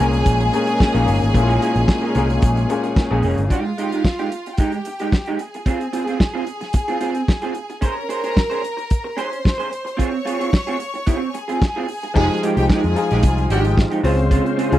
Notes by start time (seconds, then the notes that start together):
Already playing: G#3 A#3 C#4 G#4 G#5
0.00 C2 A#2 A#3 C#4 G#4 A#4
0.12 muted clean electric guitar stroke, closed hi-hat
0.26 A#1, muted clean electric guitar stroke, kick, closed hi-hat
0.40 muted clean electric guitar stroke, closed hi-hat
0.53 A#2 A#3 C#4 G#4, closed hi-hat
0.67 muted clean electric guitar stroke, closed hi-hat
0.80 muted clean electric guitar stroke, kick, snare
0.93 A#1 A#2 A#3 C#4 D#4 G#4, closed hi-hat
1.06 G1 A#3 C#4 G#4, open hi-hat
1.19 G#1, muted clean electric guitar stroke
1.23 closed hi-hat
1.33 A#1 A#2 A#3 C#4 E4, muted clean electric guitar stroke, kick, closed hi-hat
1.43 F4
1.47 A#3 C#4 G#4, closed hi-hat
1.59 A#3 C#4 G#4, closed hi-hat
1.74 A#1, muted clean electric guitar stroke, closed hi-hat
1.87 muted clean electric guitar stroke, kick, snare
2.01 A#3 C#4 G#4
2.15 C2 A#2 A#3 C#4 G#4 A#4, closed hi-hat
2.29 muted clean electric guitar stroke, closed hi-hat
2.42 A#1, muted clean electric guitar stroke, kick, closed hi-hat
2.57 muted clean electric guitar stroke, closed hi-hat
2.69 A#2 A#3 C#4 G#4, closed hi-hat
2.83 muted clean electric guitar stroke, closed hi-hat
2.96 muted clean electric guitar stroke, kick, snare
3.10 A#1 A#2 A#3 C#4 G#4
3.23 F1 A#3 C#4 G#4, open hi-hat
3.37 G1, muted clean electric guitar stroke, closed hi-hat
3.49 G#3 D#4 F4 G4 F5, kick, closed hi-hat
3.65 muted clean electric guitar stroke
3.78 G#3 D#4 G4, closed hi-hat
3.92 G#3 D#4 G4, closed hi-hat
4.04 muted clean electric guitar stroke, kick, snare
4.19 G#3 D#4 G4, closed hi-hat
4.31 muted clean electric guitar stroke, closed hi-hat
4.46 muted clean electric guitar stroke, closed hi-hat
4.57 G#3 D#4 G4 G5, kick, closed hi-hat
4.72 muted clean electric guitar stroke, closed hi-hat
4.85 muted clean electric guitar stroke, closed hi-hat
4.99 G#3 D#4 G4, closed hi-hat
5.12 muted clean electric guitar stroke, kick, snare
5.26 G#3 D#4 G4, closed hi-hat
5.39 G#4 G#5, muted clean electric guitar stroke, closed hi-hat
5.54 muted clean electric guitar stroke, closed hi-hat
5.66 C4 F4 G#4, kick, closed hi-hat
5.80 muted clean electric guitar stroke, closed hi-hat
5.93 C4 F4 G#4, closed hi-hat
6.06 C4 F4 G#4, closed hi-hat
6.20 kick, snare
6.34 C4 F4 G#4
6.46 muted clean electric guitar stroke, closed hi-hat
6.61 muted clean electric guitar stroke, snare, closed hi-hat
6.73 muted clean electric guitar stroke, kick, closed hi-hat
6.88 C4 F4 G#4, closed hi-hat
7.01 C4 F4 G#4, closed hi-hat
7.15 muted clean electric guitar stroke, closed hi-hat
7.28 muted clean electric guitar stroke, kick, snare
7.42 C4 F4 G#4, closed hi-hat
7.55 muted clean electric guitar stroke, closed hi-hat
7.70 muted clean electric guitar stroke, closed hi-hat
7.81 C#4 G#4 A#4 C5 A#5, kick, closed hi-hat
7.96 muted clean electric guitar stroke
8.09 C#4 G#4 C5, closed hi-hat
8.24 C#4 G#4 C5, closed hi-hat
8.37 muted clean electric guitar stroke, kick, snare
8.50 C#4 G#4 C5, closed hi-hat
8.63 muted clean electric guitar stroke, closed hi-hat
8.77 muted clean electric guitar stroke, closed hi-hat
8.90 kick, closed hi-hat
9.04 muted clean electric guitar stroke
9.17 C#4 G#4 C5 C6, closed hi-hat
9.31 muted clean electric guitar stroke, closed hi-hat
9.44 muted clean electric guitar stroke, kick, snare
9.58 C#4 G#4 C5, closed hi-hat
9.71 muted clean electric guitar stroke, closed hi-hat
9.85 muted clean electric guitar stroke, closed hi-hat
9.97 C4 F4 G#4 C#5 C#6, kick, closed hi-hat
10.12 muted clean electric guitar stroke
10.25 C4 F4 G#4, closed hi-hat
10.39 C4 F4 G#4, closed hi-hat
10.52 muted clean electric guitar stroke, kick, snare
10.67 C4 F4 G#4, closed hi-hat
10.79 muted clean electric guitar stroke, closed hi-hat
10.94 muted clean electric guitar stroke, closed hi-hat
11.06 C4 F4 G#4, kick, closed hi-hat
11.21 muted clean electric guitar stroke
11.34 G#4 G#5, muted clean electric guitar stroke, closed hi-hat
11.48 C4 F4 G#4, closed hi-hat
11.62 muted clean electric guitar stroke, kick, snare
11.76 C4 F4 G#4
11.88 muted clean electric guitar stroke, open hi-hat
12.03 muted clean electric guitar stroke, closed hi-hat
12.14 F1 F3 G#3 D#4 F4 G4 G#4 G#5, kick, crash
12.30 muted clean electric guitar stroke
12.43 G#3 D#4 G4, closed hi-hat
12.56 C2 G#3 D#4 G4 G5, closed hi-hat
12.69 G#3 D#4 G4 G#4 G#5, muted picked electric bass stroke, kick, snare
12.84 F2, muted clean electric guitar stroke, closed hi-hat
12.95 F3 D#4 F4 G#4, muted clean electric guitar stroke, closed hi-hat
13.11 A#1 G#3 D#4 G4, snare, closed hi-hat
13.23 C2, muted clean electric guitar stroke, kick, closed hi-hat
13.38 muted clean electric guitar stroke, closed hi-hat
13.50 G#1 G#3 D#4 G4 G5, closed hi-hat
13.65 muted clean electric guitar stroke, closed hi-hat
13.77 muted clean electric guitar stroke, kick, snare
13.91 G#3 D#4 G4, closed hi-hat
14.03 C#2 C#3 G#3 C4 C#4 F4 G#4 C5, open hi-hat
14.18 muted clean electric guitar stroke, closed hi-hat
14.31 C4 F4 G#4, kick, closed hi-hat
14.45 muted clean electric guitar stroke, closed hi-hat
14.57 C4 F4 G#4, closed hi-hat
14.71 C#2 C#3 C4 C#4 F4 G#4, closed hi-hat